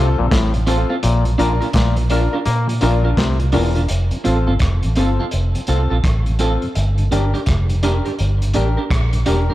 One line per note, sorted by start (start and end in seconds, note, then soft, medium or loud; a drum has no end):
0.00 0.17 C2 loud
0.00 0.16 C4 medium
0.00 0.17 F4 medium
0.00 0.18 A4 loud
0.18 0.31 A#1 medium
0.18 0.24 F2 medium
0.18 0.26 A#2 medium
0.18 0.24 C3 medium
0.18 0.32 C4 medium
0.18 0.32 F4 medium
0.18 0.32 A4 medium
0.31 0.83 A1 loud
0.31 0.53 A2 medium
0.31 kick loud
0.31 snare loud
0.31 closed hi-hat medium
0.54 0.60 F2 medium
0.54 0.60 C3 medium
0.54 closed hi-hat soft
0.67 0.77 A3 medium
0.67 0.77 C4 medium
0.67 0.79 C4 medium
0.67 0.90 C4 medium
0.67 0.79 F4 medium
0.67 0.78 F4 medium
0.67 0.90 F4 medium
0.67 0.80 A4 loud
0.67 0.90 A4 loud
0.67 closed hi-hat medium
0.89 0.96 C4 medium
0.89 0.96 F4 medium
0.89 0.95 A4 medium
1.03 1.35 A#1 medium
1.03 1.24 A#2 medium
1.03 closed hi-hat medium
1.25 1.32 A#2 medium
1.25 1.32 F3 medium
1.25 closed hi-hat soft
1.38 1.59 A#1 medium
1.38 1.52 A#2 medium
1.38 1.49 A#3 medium
1.38 1.51 D4 medium
1.38 1.61 D4 medium
1.38 1.49 D4 medium
1.38 1.51 F4 medium
1.38 1.61 F4 medium
1.38 1.49 F4 medium
1.38 1.51 A#4 medium
1.38 1.62 A#4 loud
1.38 closed hi-hat medium
1.61 1.67 A#2 medium
1.61 1.67 F3 medium
1.61 1.67 D4 medium
1.61 1.67 F4 medium
1.61 1.67 A#4 medium
1.61 closed hi-hat soft
1.73 2.26 A#1 loud
1.73 1.96 A#2 medium
1.73 kick loud
1.73 snare loud
1.73 closed hi-hat loud
1.96 2.03 A#2 medium
1.96 2.03 F3 medium
1.96 closed hi-hat medium
2.10 2.20 A#3 medium
2.10 2.21 D4 medium
2.10 2.33 D4 medium
2.10 2.23 D4 medium
2.10 2.21 F4 medium
2.10 2.33 F4 medium
2.10 2.23 F4 medium
2.10 2.34 A#4 loud
2.10 2.23 A#4 medium
2.10 closed hi-hat medium
2.31 2.38 D4 medium
2.31 2.39 D4 medium
2.31 2.39 F4 medium
2.31 2.39 A#4 medium
2.45 2.78 A#2 loud
2.45 2.67 A#3 medium
2.45 closed hi-hat medium
2.68 2.74 A#2 medium
2.68 2.74 F3 medium
2.68 closed hi-hat medium
2.81 3.14 A#1 loud
2.81 3.03 A#2 medium
2.81 2.91 A#3 medium
2.81 2.92 D4 medium
2.81 3.03 D4 medium
2.81 2.94 D4 medium
2.81 2.92 F4 medium
2.81 3.03 F4 medium
2.81 2.95 F4 medium
2.81 3.04 A#4 loud
2.81 2.95 A#4 medium
2.81 closed hi-hat medium
3.03 3.10 A#2 medium
3.03 3.10 F3 medium
3.03 3.18 D4 medium
3.03 3.10 D4 medium
3.03 3.18 F4 medium
3.03 3.10 F4 medium
3.03 3.10 A#4 medium
3.03 3.18 A#4 medium
3.17 3.56 C2 medium
3.17 3.39 C3 medium
3.17 kick loud
3.17 snare loud
3.17 closed hi-hat medium
3.39 3.46 A#2 medium
3.39 3.46 F3 medium
3.39 closed hi-hat soft
3.52 3.86 E1 medium
3.52 3.74 E2 medium
3.52 3.63 A#3 medium
3.52 3.63 D4 medium
3.52 3.65 D4 loud
3.52 3.76 D4 loud
3.52 3.63 F4 medium
3.52 3.76 F4 medium
3.52 3.66 F4 medium
3.52 3.66 A#4 loud
3.52 3.76 A#4 loud
3.52 open hi-hat medium
3.75 3.81 A#2 medium
3.75 3.81 F3 medium
3.75 3.82 D4 soft
3.75 3.81 F4 medium
3.75 3.81 A#4 medium
3.75 closed hi-hat soft
3.88 4.10 F1 medium
3.88 closed hi-hat medium
4.11 4.18 F2 medium
4.11 4.18 C3 soft
4.11 closed hi-hat soft
4.24 4.46 A1 medium
4.24 4.35 A3 medium
4.24 4.35 C4 medium
4.24 4.37 C4 medium
4.24 4.47 C4 medium
4.24 4.35 F4 medium
4.24 4.37 F4 medium
4.24 4.48 F4 medium
4.24 4.37 A4 medium
4.24 4.48 A4 medium
4.24 closed hi-hat medium
4.47 4.60 G1 medium
4.47 4.53 F2 soft
4.47 4.54 C3 medium
4.47 4.53 C4 soft
4.47 4.53 F4 medium
4.47 4.53 A4 medium
4.59 4.81 F1 medium
4.59 kick loud
4.59 cross-stick loud
4.59 closed hi-hat medium
4.83 4.96 A1 medium
4.83 4.89 F2 soft
4.83 4.89 C3 medium
4.83 closed hi-hat soft
4.96 5.17 G1 medium
4.96 5.07 A3 medium
4.96 5.19 C4 medium
4.96 5.07 C4 medium
4.96 5.09 C4 medium
4.96 5.07 F4 medium
4.96 5.19 F4 medium
4.96 5.09 F4 medium
4.96 5.20 A4 medium
4.96 5.10 A4 medium
4.96 closed hi-hat medium
5.19 5.25 F2 medium
5.19 5.25 C3 medium
5.19 5.26 C4 soft
5.19 5.25 F4 soft
5.19 5.25 A4 medium
5.31 5.53 F1 medium
5.31 closed hi-hat medium
5.55 5.61 F2 soft
5.55 5.61 C3 medium
5.55 closed hi-hat soft
5.67 5.88 C2 medium
5.67 5.78 A3 medium
5.67 5.80 C4 medium
5.67 5.91 C4 medium
5.67 5.79 C4 medium
5.67 5.81 F4 medium
5.67 5.91 F4 medium
5.67 5.79 F4 medium
5.67 5.81 A4 medium
5.67 5.91 A4 loud
5.67 closed hi-hat medium
5.90 6.03 A#1 medium
5.90 5.97 C4 soft
5.90 5.97 F4 soft
5.90 5.96 A4 medium
6.04 6.56 A1 medium
6.04 kick loud
6.04 cross-stick loud
6.04 closed hi-hat medium
6.26 6.32 F2 medium
6.26 6.32 C3 medium
6.26 closed hi-hat soft
6.39 6.50 A3 medium
6.39 6.52 C4 medium
6.39 6.62 C4 medium
6.39 6.50 C4 medium
6.39 6.62 F4 medium
6.39 6.52 F4 medium
6.39 6.50 F4 medium
6.39 6.52 A4 medium
6.39 6.63 A4 medium
6.39 closed hi-hat medium
6.62 6.69 F2 medium
6.62 6.68 C3 medium
6.62 closed hi-hat soft
6.75 7.08 G1 medium
6.75 closed hi-hat medium
6.98 7.04 G2 medium
6.98 7.04 D3 medium
6.98 closed hi-hat soft
7.10 7.32 G1 loud
7.10 7.21 G3 medium
7.10 7.21 A#3 medium
7.10 7.22 D4 medium
7.10 7.34 D4 medium
7.10 7.24 D4 medium
7.10 7.34 G4 medium
7.10 7.24 G4 medium
7.10 7.24 A#4 medium
7.10 7.35 A#4 medium
7.10 closed hi-hat medium
7.34 7.40 G2 soft
7.34 7.40 D3 medium
7.34 7.40 D4 soft
7.34 7.40 G4 medium
7.34 7.40 A#4 medium
7.34 closed hi-hat soft
7.46 7.99 F1 medium
7.46 kick loud
7.46 cross-stick loud
7.46 closed hi-hat medium
7.69 7.76 G2 medium
7.69 7.76 D3 medium
7.69 closed hi-hat medium
7.83 7.93 G3 medium
7.83 7.93 A#3 medium
7.83 8.05 D4 medium
7.83 7.95 D4 medium
7.83 7.94 D4 medium
7.83 8.06 G4 medium
7.83 7.95 G4 medium
7.83 8.06 A#4 medium
7.83 7.96 A#4 medium
7.83 closed hi-hat medium
8.05 8.12 G2 medium
8.05 8.12 D3 medium
8.05 8.11 D4 soft
8.05 8.11 G4 soft
8.05 8.11 A#4 medium
8.05 closed hi-hat soft
8.19 8.51 G1 medium
8.19 closed hi-hat medium
8.41 8.47 G2 medium
8.41 8.47 D3 medium
8.41 closed hi-hat soft
8.53 8.75 A1 medium
8.53 8.65 G3 medium
8.53 8.65 A#3 medium
8.53 8.67 D4 medium
8.53 8.78 D4 medium
8.53 8.65 D4 medium
8.53 8.67 G4 medium
8.53 8.78 G4 medium
8.53 8.67 A#4 medium
8.53 8.78 A#4 medium
8.53 closed hi-hat medium
8.77 8.84 D4 soft
8.77 8.83 G4 medium
8.77 8.83 A#4 medium
8.90 9.23 A#1 medium
8.90 kick loud
8.90 cross-stick loud
8.90 closed hi-hat medium
9.13 9.19 G2 medium
9.13 9.19 D3 medium
9.13 closed hi-hat soft
9.26 9.47 E1 medium
9.26 9.37 G3 medium
9.26 9.37 A#3 medium
9.26 9.38 D4 medium
9.26 9.49 D4 medium
9.26 9.37 D4 medium
9.26 9.39 G4 medium
9.26 9.49 G4 medium
9.26 9.39 A#4 medium
9.26 9.50 A#4 medium
9.26 closed hi-hat medium
9.49 9.54 G2 medium
9.49 9.54 D3 medium
9.49 9.54 D4 soft
9.49 9.54 G4 soft
9.49 9.54 A#4 medium